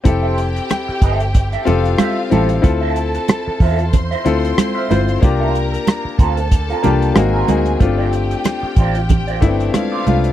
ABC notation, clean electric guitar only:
X:1
M:4/4
L:1/16
Q:"Swing 16ths" 1/4=93
K:F
V:1 name="Clean electric guitar"
z [Ace] z4 [Ace] z2 [Ace] z2 [Ace] z [Ace] z | z [Fce] z4 [Fce] z2 [Fce] z3 [Fce] z2 | z [CFB] z4 [CFB] z2 [CFB] z3 [C_GB] z2 | z [Fcd] z4 [Fcd] z2 [Fcd] z3 [Fcd] z2 |]